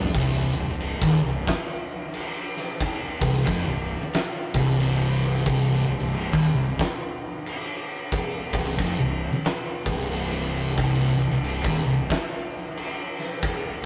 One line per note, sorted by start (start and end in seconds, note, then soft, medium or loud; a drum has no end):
0.00 0.11 F#1 medium
0.00 0.14 F#2 loud
0.00 floor tom medium
0.14 0.53 C1 medium
0.14 0.55 C2 loud
0.14 kick loud
0.14 crash medium
0.56 0.67 C1 medium
0.56 0.67 C2 medium
0.68 0.99 C1 medium
0.68 0.94 C2 medium
0.81 crash medium
1.02 1.21 D#1 loud
1.02 1.21 D#2 loud
1.02 kick loud
1.21 1.45 C1 medium
1.21 1.42 C2 medium
1.47 kick loud
1.47 snare loud
1.47 crash medium
2.14 crash medium
2.57 snare soft
2.81 kick loud
2.81 crash medium
3.21 3.45 C1 medium
3.21 3.46 C2 loud
3.21 kick loud
3.47 3.66 F1 loud
3.47 3.66 F2 medium
3.47 kick loud
3.47 crash medium
3.67 3.98 C1 medium
3.67 3.96 C2 medium
4.01 muted distorted electric guitar stroke medium
4.01 muted fingered electric bass stroke soft
4.13 snare loud
4.13 crash medium
4.54 5.42 C1 loud
4.54 5.45 C2 loud
4.54 kick loud
4.80 crash medium
5.22 snare soft
5.46 5.84 C1 medium
5.46 5.86 C2 loud
5.46 kick loud
5.46 crash medium
5.88 5.99 C1 medium
5.88 5.99 C2 medium
6.00 6.31 C1 medium
6.00 6.25 C2 medium
6.13 crash medium
6.33 6.52 D#1 loud
6.33 6.52 D#2 loud
6.33 kick loud
6.54 6.77 C1 medium
6.54 6.74 C2 medium
6.79 kick loud
6.79 snare loud
6.79 crash medium
7.46 crash medium
8.12 kick loud
8.12 crash medium
8.53 8.77 C1 medium
8.53 8.78 C2 medium
8.53 kick loud
8.78 8.98 F1 loud
8.78 8.98 F2 loud
8.78 kick loud
8.78 crash medium
8.99 9.30 C1 medium
8.99 9.27 C2 medium
9.32 muted distorted electric guitar stroke medium
9.32 muted fingered electric bass stroke soft
9.45 snare loud
9.45 crash medium
9.86 10.74 C1 loud
9.86 10.77 C2 loud
9.86 kick loud
10.11 crash medium
10.78 11.16 C1 medium
10.78 11.18 C2 loud
10.78 kick loud
10.78 crash medium
11.18 11.30 C1 medium
11.18 11.30 C2 medium
11.31 11.62 C1 medium
11.31 11.56 C2 medium
11.44 crash medium
11.64 11.84 D#1 medium
11.64 11.83 D#2 medium
11.64 kick loud
11.85 12.08 C1 medium
11.85 12.05 C2 medium
12.10 kick loud
12.10 snare loud
12.10 crash medium
12.77 crash medium
13.19 snare soft
13.43 kick loud
13.43 crash medium